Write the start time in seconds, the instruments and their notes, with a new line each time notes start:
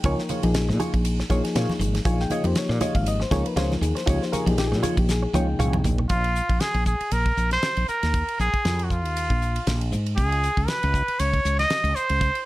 Already playing: reed electric piano G5
0.04 fretless electric bass C#2, reed electric piano F3 A#3 D#4 A#4, clean electric guitar F4 G#4 C#5, kick, hi-hat pedal, ride
0.19 snare
0.29 clean electric guitar F4 G#4 C#5, muted fretless electric bass stroke, hi-hat pedal, ride, low conga
0.43 fretless electric bass A#1, reed electric piano F3 A#3 D#4 G#4, ride, high conga
0.54 muted clean electric guitar stroke, snare, hi-hat pedal, ride
0.69 fretless electric bass A#2, muted clean electric guitar stroke, snare
0.80 clean electric guitar F4 G#4 C#5, muted fretless electric bass stroke, hi-hat pedal, ride, high conga, low conga
0.94 fretless electric bass A#1, muted clean electric guitar stroke, kick, ride
1.05 hi-hat pedal, ride
1.19 muted clean electric guitar stroke, snare
1.30 fretless electric bass A#1, reed electric piano F3 A#3 D#4 G#4, clean electric guitar F4 G#4 C#5, kick, hi-hat pedal, ride, high conga
1.44 muted clean electric guitar stroke, snare, ride
1.55 fretless electric bass A#2, clean electric guitar F4 G#4 C#5, snare, hi-hat pedal, ride
1.69 muted fretless electric bass stroke, snare, high conga
1.79 fretless electric bass G#1, muted clean electric guitar stroke, hi-hat pedal, ride, low conga
1.95 muted clean electric guitar stroke, snare, ride
2.05 fretless electric bass A#1, reed electric piano F3 A#3 D#4 G#4, clean electric guitar F4 G#4 C#5, kick, hi-hat pedal, ride
2.20 reed electric piano G5, snare
2.30 clean electric guitar F4 G#4 C#5, reed electric piano D#5, muted fretless electric bass stroke, hi-hat pedal, ride, low conga
2.44 fretless electric bass F2, reed electric piano F3 A#3 D#4 G4 C5, muted clean electric guitar stroke, ride, high conga
2.55 reed electric piano C#5, muted clean electric guitar stroke, snare, hi-hat pedal, ride
2.69 fretless electric bass A#2, reed electric piano D5, muted clean electric guitar stroke, snare
2.81 clean electric guitar F4 G#4 C#5, reed electric piano D#5, hi-hat pedal, ride, high conga, low conga
2.95 fretless electric bass G#1, reed electric piano F5, kick, ride
3.06 reed electric piano D#5, hi-hat pedal, ride
3.20 reed electric piano C5, muted clean electric guitar stroke, snare
3.31 fretless electric bass C#2, reed electric piano F3 A#3 D#4 A#4 C#5, clean electric guitar F4 G#4 C#5, kick, snare, hi-hat pedal, ride, high conga
3.45 reed electric piano B4, muted clean electric guitar stroke, ride
3.56 fretless electric bass C#2, clean electric guitar F4 G#4 C#5, reed electric piano C5, snare, hi-hat pedal, ride
3.71 reed electric piano F4, snare, high conga
3.81 fretless electric bass D#2, reed electric piano G#4, muted clean electric guitar stroke, hi-hat pedal, ride, low conga
3.95 reed electric piano C5, muted clean electric guitar stroke, snare, ride
4.06 fretless electric bass C#2, reed electric piano F3 A#3 D#4 G4 C#5, clean electric guitar F4 G#4 C#5, kick, hi-hat pedal, ride
4.22 reed electric piano C5, snare
4.32 clean electric guitar F4 G#4 C#5, reed electric piano A#4, muted fretless electric bass stroke, hi-hat pedal, ride, low conga
4.46 fretless electric bass A#1, reed electric piano F3 A#3 D#4 G4 G#4, muted clean electric guitar stroke, ride, high conga
4.57 reed electric piano G4, muted clean electric guitar stroke, snare, hi-hat pedal, ride
4.67 reed electric piano G#4
4.72 fretless electric bass A#2, muted clean electric guitar stroke, snare
4.76 reed electric piano G4
4.83 clean electric guitar F4 G#4 C#5, reed electric piano F4, muted fretless electric bass stroke, hi-hat pedal, ride, high conga, low conga
4.97 fretless electric bass A#1, reed electric piano G4, muted clean electric guitar stroke, kick, ride
5.09 reed electric piano G#4, snare, hi-hat pedal
5.23 muted clean electric guitar stroke
5.33 fretless electric bass C#2, reed electric piano F3 A#3 D#4 G5, clean electric guitar F4 G#4 C#5, hi-hat pedal, high tom, high conga
5.59 fretless electric bass C2, clean electric guitar F4 G#4 C#5, hi-hat pedal, mid tom, low conga
5.73 mid tom, high conga
5.84 fretless electric bass A#1, muted clean electric guitar stroke, floor tom, hi-hat pedal, low conga
5.98 muted clean electric guitar stroke, floor tom
6.09 fretless electric bass A#1, muted trumpet F4, kick, hi-hat pedal, ride
6.24 ride
6.35 hi-hat pedal
6.49 fretless electric bass A#1, kick, ride
6.60 muted trumpet G#4, snare, hi-hat pedal, ride
6.74 fretless electric bass A#1, ride
6.86 muted trumpet G#4, kick, hi-hat pedal
7.00 muted fretless electric bass stroke, ride
7.11 fretless electric bass A#1, muted trumpet A#4, hi-hat pedal, ride
7.25 kick, ride
7.37 fretless electric bass A#1, hi-hat pedal
7.51 muted trumpet C5, snare, ride
7.62 snare, hi-hat pedal, ride
7.77 fretless electric bass A#1, ride
7.88 muted trumpet A#4, hi-hat pedal
8.03 fretless electric bass D#2, snare, ride
8.14 kick, hi-hat pedal, ride
8.28 ride
8.39 fretless electric bass A#1, muted trumpet G#4, hi-hat pedal
8.54 kick, ride
8.65 fretless electric bass F2, snare, hi-hat pedal, ride
8.79 ride
8.84 muted trumpet F#4
8.90 muted trumpet F4, kick, hi-hat pedal
9.05 fretless electric bass D#2, ride
9.17 hi-hat pedal, ride
9.30 fretless electric bass A#1, kick, ride
9.41 hi-hat pedal
9.56 ride
9.67 fretless electric bass A#1, snare, hi-hat pedal, ride
9.81 ride
9.92 fretless electric bass G#2, hi-hat pedal
10.06 ride
10.16 fretless electric bass C#2, muted trumpet G#4, kick, hi-hat pedal, ride
10.32 ride
10.43 hi-hat pedal
10.57 fretless electric bass C#2, kick, ride
10.68 muted trumpet B4, snare, hi-hat pedal, ride
10.83 fretless electric bass C#2, ride
10.94 kick, hi-hat pedal
11.08 muted fretless electric bass stroke, ride
11.19 fretless electric bass C#2, muted trumpet C#5, hi-hat pedal, ride
11.34 kick, ride
11.45 fretless electric bass C#2, hi-hat pedal
11.59 muted trumpet D#5, snare, ride
11.70 snare, hi-hat pedal, ride
11.84 fretless electric bass C#2, ride
11.96 muted trumpet C5, hi-hat pedal
12.09 fretless electric bass C#2, ride
12.21 kick, hi-hat pedal, ride
12.35 ride